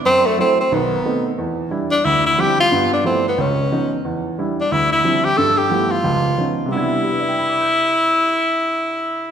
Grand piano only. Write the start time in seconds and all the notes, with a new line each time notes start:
0.05 F#2
0.38 F#3 A3 E4
0.72 B1 D#3
1.05 A3 B3 C4 D#4
1.38 E2
1.71 G3 D4 E4
2.05 D2
2.38 F3 G3 C4 D4 E4
2.72 G2 B3
3.04 F3 G3 A3 B3 E4
3.38 C#2
3.72 F3 B3 C#4 D#4
4.04 E2
4.38 G3 D4 E4
4.72 D2
5.04 F3 G3 C4 D4 E4
5.38 G2
5.70 F3 G3 A3 B3 E4
6.04 C#2 F3
6.37 F3 B3 C#4 D#4
6.65 C3 G3
6.72 B3 D4
6.77 E4
7.04 G4
7.12 B4
7.20 D5
7.29 G5
7.39 B5
7.50 D6
7.61 G6